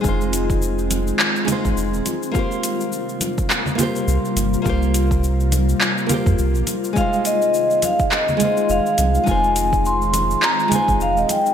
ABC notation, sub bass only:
X:1
M:4/4
L:1/16
Q:"Swing 16ths" 1/4=104
K:Fm
V:1 name="Sub bass" clef=bass
F,,,6- F,,, z4 A,,, F,,, E,,, z2 | z12 C,, z G,,, z | C,,6- C,, z4 F,, C,, B,,, z2 | z12 F,,, z C,, z |
F,,,6- F,,, z4 A,,, F,,, E,,, z2 |]